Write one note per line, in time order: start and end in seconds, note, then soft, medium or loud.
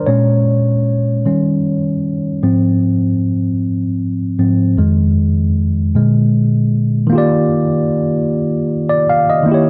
0.07 0.59 A#2 soft
0.07 0.60 G#3 soft
0.07 0.60 C#4 medium
0.07 1.60 C#5 medium
1.25 1.77 D#3 soft
1.25 1.77 G3 soft
1.25 1.78 C#4 soft
2.43 2.95 G#2 soft
2.43 2.95 F3 soft
2.43 2.95 C4 medium
4.39 4.74 G#2 soft
4.39 4.74 F3 soft
4.39 4.74 C4 soft
4.77 5.91 F2 soft
4.77 5.91 D#3 soft
4.77 5.92 G#3 medium
5.95 7.09 A#2 medium
5.95 7.09 D3 soft
5.95 7.09 G#3 medium
7.07 9.41 D#3 medium
7.07 9.43 A#3 medium
7.13 9.44 F4 medium
7.13 9.45 G4 medium
7.18 8.69 D5 medium
8.89 9.08 D5 medium
9.10 9.28 F5 medium
9.30 9.66 D#5 medium
9.43 9.70 D#3 medium
9.43 9.70 A#3 medium
9.49 9.70 E4 medium
9.49 9.70 G4 medium
9.54 9.70 C#5 medium